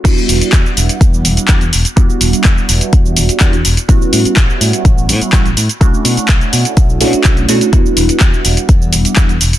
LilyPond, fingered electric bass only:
\new Staff \with { instrumentName = "Fingered electric bass" } { \clef bass \time 4/4 \key e \dorian \tempo 4 = 125 e,8 e,,8 e,8 e,,8 e,8 e,,8 e,8 e,,8 | e,8 e,,8 e,8 e,,8 e,8 e,,8 e,8 e,,8 | a,,8 a,8 a,,8 a,8 a,,8 a,8 a,,8 a,8 | b,,8 b,8 b,,8 b,8 b,,8 b,8 b,,8 b,8 |
e,8 e,,8 e,8 e,,8 e,8 e,,8 e,8 e,,8 | }